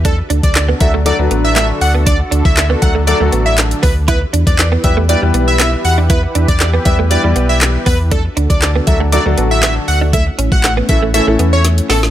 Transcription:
<<
  \new Staff \with { instrumentName = "Digital synth lead" } { \time 4/4 \key d \major \tempo 4 = 119 a'16 r8 d''8 r16 e''16 r16 d''16 r8 e''16 e''16 r16 fis''16 r16 | d''16 r8 e''8 r16 fis''16 r16 d''16 r8 e''16 r8 b'16 r16 | b'16 r8 d''8 r16 e''16 r16 d''16 r8 e''16 e''16 r16 fis''16 r16 | b'16 r8 d''8 r16 e''16 r16 d''16 r8 e''16 r8 b'16 r16 |
a'16 r8 d''8 r16 e''16 r16 d''16 r8 e''16 e''16 r16 fis''16 r16 | e''16 r8 fis''8 r16 e''16 r16 e''16 r8 cis''16 r8 a'16 r16 | }
  \new Staff \with { instrumentName = "Analog synth pad" } { \time 4/4 \key d \major <d d' fis' a'>1~ | <d d' fis' a'>1 | <e e' g' b'>1~ | <e e' g' b'>1 |
<d d' fis' a'>1 | <a cis' e'>1 | }
  \new Staff \with { instrumentName = "Grand piano" } { \time 4/4 \key d \major r4. <fis a d' fis' a'>16 r16 <fis a d' fis' a'>16 <fis a d' fis' b'>4~ <fis a d' fis' b'>16 r8 | r4. <fis a d' fis' a'>16 r16 <fis a d' fis' a'>16 <fis a d' fis' a'>4~ <fis a d' fis' a'>16 r8 | r4. <g b e' g' b'>16 r16 <g b e' g' b'>16 <g b e' g' b'>4~ <g b e' g' b'>16 r8 | r4. <g b e' g' b'>16 r16 <g b e' g' b'>16 <g b e' g' d''>4~ <g b e' g' d''>16 r8 |
r4. <fis a d' fis' a'>16 r16 <fis a d' fis' a'>16 <fis a d' fis' a'>4~ <fis a d' fis' a'>16 r8 | r4. <e a cis' e' a'>16 r16 <e a cis' e' a'>16 <e a cis' e' a'>4~ <e a cis' e' a'>16 r8 | }
  \new Staff \with { instrumentName = "Clean electric guitar" } { \time 4/4 \key d \major d'16 r16 d'16 r8 b16 r16 a16 r16 a16 b16 r16 a16 r8 b16 | d'16 r16 d'16 r8 b16 r16 a16 r16 a16 b16 r8. b16 r16 | e'16 r16 d'16 r8 b16 r16 a16 r16 g16 b16 r16 b16 r8 d'16 | e'16 r16 d'16 r8 b16 r16 a16 r16 g16 b16 r8. b16 r16 |
d'16 r16 d'16 r8 b16 r16 a16 r16 a16 b16 r16 b16 r8 d'16 | a16 r16 cis'16 r8 b16 r16 a16 r16 a16 b16 r8. b16 r16 | }
  \new Staff \with { instrumentName = "Sub bass" } { \clef bass \time 4/4 \key d \major e,8 d,16 d,8. d,8. d,16 a,,4 d,8~ | d,8 d,16 d,8. d,8. d,16 a,,4 d,8~ | d,8 e,16 e,8. e,8. e,16 b,,4 e,8~ | e,8 e,16 e,8. e,8. e,16 b,,4 e,8~ |
e,8 d,16 d,8. d,8. d,16 a,,4 d,8~ | d,8 a,,16 a,,8. a,,8. a,,16 e,4 a,,8 | }
  \new DrumStaff \with { instrumentName = "Drums" } \drummode { \time 4/4 <hh bd>8 hh16 <hh bd>16 <hc hh sn>8 <hh bd>8 hh8 hh8 <hc hh sn>8 hho8 | <hh bd>8 hh16 bd16 <hc hh sn>8 <hh bd>8 hh8 hh8 <hc hh sn>16 hh16 <hho bd>8 | <hh bd>8 hh16 <hh bd>16 <hc hh sn>8 <hh bd>8 hh8 hh8 <hc hh sn>8 hho8 | <hh bd>8 hh16 <hh bd>16 <hc hh sn>8 <hh bd>8 hh8 hh8 <hc hh sn>8 <hho bd>8 |
<hh bd>8 hh16 <hh bd>16 <hc hh sn>8 <hh bd>8 hh8 hh8 <hc hh sn>8 hho8 | <hh bd>8 hh16 bd16 <hc hh sn>8 <hh bd>8 hh8 hh8 <hh sn>16 hh16 <hho sn>16 sn16 | }
>>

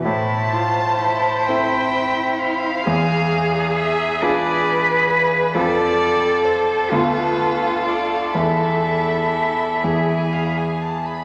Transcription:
<<
  \new Staff \with { instrumentName = "Violin" } { \time 6/8 \key a \minor \tempo 4. = 43 a''4. g''4 f''8~ | f''4 e''8 d''4 b'8 | d''4 c''8 b'4 d''8 | e''4.~ e''16 gis''16 f''16 gis''16 a''16 b''16 | }
  \new Staff \with { instrumentName = "Violin" } { \time 6/8 \key a \minor c''2. | gis'2. | a'2.~ | a'4. gis'4. | }
  \new Staff \with { instrumentName = "Cello" } { \time 6/8 \key a \minor e'8 f'8 e'2 | gis'4. b'4. | a'4. f'4. | e'2~ e'16 r8. | }
  \new Staff \with { instrumentName = "Grand piano" } { \time 6/8 \key a \minor a,4. <c' e' a'>4. | e,4. <d' f' gis'>4. | <f, c' f' a'>4. <d, b f' a'>4. | <e, b e' a'>4. <e, b e' gis'>4. | }
>>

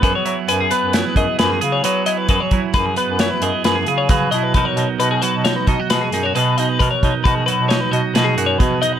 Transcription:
<<
  \new Staff \with { instrumentName = "Clean electric guitar" } { \time 5/4 \key b \major \tempo 4 = 133 b'16 cis''8 r16 b'16 gis'16 b'8 cis''16 b'16 dis''8 b'16 gis'8 cis''16 b'8 dis''16 b'16 | b'16 cis''8 r16 b'16 gis'16 b'8 cis''16 b'16 dis''8 b'16 gis'8 cis''16 b'8 dis''16 b'16 | b'16 cis''8 r16 b'16 gis'16 b'8 cis''16 b'16 dis''8 b'16 gis'8 cis''16 b'8 dis''16 b'16 | b'16 cis''8 r16 b'16 gis'16 b'8 cis''16 b'16 dis''8 b'16 gis'8 cis''16 b'8 dis''16 b'16 | }
  \new Staff \with { instrumentName = "Clean electric guitar" } { \time 5/4 \key b \major << { <b gis'>8 e'8 gis'4 e'8 gis'8 gis'8 gis'8 gis'8 e'8 | gis'8 e'8 gis'4 e'8 gis'8 gis'8 gis'8 gis'8 e'8 | <fis dis' fis' ais'>8 dis'8 fis'4 dis'8 dis'16 fis'16 gis'8 dis'16 fis'16 gis'8 dis'8 | ais'8 dis'8 fis'4 dis'8 fis'8 gis'8 fis'8 gis'8 dis'8 | } \\ { fis4. b2~ b8 fis4 | fis4. b2~ b8 fis4 | b,4. fis2~ fis8 b,4 | b,4. fis2~ fis8 b,4 | } >> }
  \new Staff \with { instrumentName = "Bass clarinet" } { \clef bass \time 5/4 \key b \major fis,16 r16 fis16 r16 fis,8 r16 fis,8 r16 fis,16 r16 fis,8 cis8 fis8 r8 | fis,16 r16 fis16 r16 fis,8 r16 fis,8 r16 fis,16 r16 fis,8 cis8 cis8 b,8 | b,16 r16 b,16 r16 b,8 r16 b,8 r16 b,16 r16 b,8 fis,8 b,8 b,16 r16 | b,16 r16 b,16 r16 b,8 r16 b,8 r16 b,16 r16 b,8 fis,8 b,8 r8 | }
  \new DrumStaff \with { instrumentName = "Drums" } \drummode { \time 5/4 <hh bd>8 hh8 hh8 hh8 <hh sn>8 <hh bd>8 <hh sn>8 hh8 hh8 hh8 | <hh bd>8 <hh bd>8 <hh bd sn>8 hh8 <hh sn>8 hh8 <hh sn>8 hh8 <hh bd sn>8 hh8 | <hh bd>8 hh8 hh8 hh8 <hh sn>8 <hh bd>8 <hh sn>8 <hh sn>8 hh8 hh8 | <hh bd>8 <hh bd>8 <hh bd>8 hh8 <hh sn>8 hh8 <hh sn>8 hh8 <hh bd>8 hh8 | }
>>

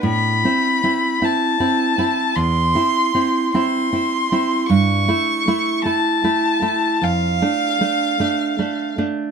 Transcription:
<<
  \new Staff \with { instrumentName = "Violin" } { \time 12/8 \key a \minor \tempo 4. = 51 b''4. a''4. c'''4. c'''4. | cis'''4. a''4. f''2~ f''8 r8 | }
  \new Staff \with { instrumentName = "Nylon-string guitar" } { \time 12/8 \key a \minor a,8 <c' e'>8 <c' e'>8 <c' e'>8 <c' e'>8 <c' e'>8 e,8 <c' e'>8 <c' e'>8 <c' e'>8 <c' e'>8 <c' e'>8 | g,8 <a e'>8 <a e'>8 <a e'>8 <a e'>8 <a e'>8 f,8 <a d'>8 <a d'>8 <a d'>8 <a d'>8 <a d'>8 | }
>>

